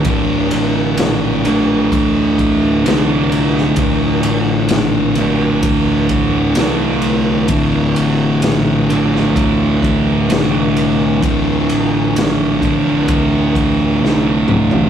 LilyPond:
<<
  \new Staff \with { instrumentName = "Distorted electric guitar" } { \clef bass \time 4/4 \key c \mixolydian \tempo 4 = 64 <d, a, d>1 | <d, a, d>1 | <d, a, d>1 | <d, a, d>1 | }
  \new Staff \with { instrumentName = "Distorted electric guitar" } { \clef bass \time 4/4 \key c \mixolydian <d, a, d>4. <d, a, d>4. <d, a, d>4 | <d, a, d>4. <d, a, d>4. <d, a, d>4 | <d, a, d>4. <d, a, d>4. <d, a, d>4 | <d, a, d>4. <d, a, d>4. <d, a, d>4 | }
  \new Staff \with { instrumentName = "Fingered electric bass" } { \clef bass \time 4/4 \key c \mixolydian d,,8 a,,8 bes,,4 d,4 c,4 | d,,8 a,,8 bes,,4 d,4 c,4 | d,,8 a,,8 bes,,4 d,4 c,4 | d,,8 a,,8 bes,,4 d,4 c,4 | }
  \new DrumStaff \with { instrumentName = "Drums" } \drummode { \time 4/4 <bd cymr>8 cymr8 <cymr sn>8 cymr8 <bd cymr>8 <bd cymr>8 <cymr sn>8 cymr16 sn16 | <bd cymr>8 cymr8 <cymr sn>8 cymr8 <bd cymr>8 <bd cymr>8 <cymr sn>8 cymr8 | <bd cymr>8 cymr8 <cymr sn>8 cymr16 sn16 <bd cymr>8 <bd cymr>8 <cymr sn>8 cymr8 | <bd cymr>8 cymr8 <cymr sn>8 <bd cymr>8 <bd cymr>8 <bd cymr>8 sn8 toml16 tomfh16 | }
>>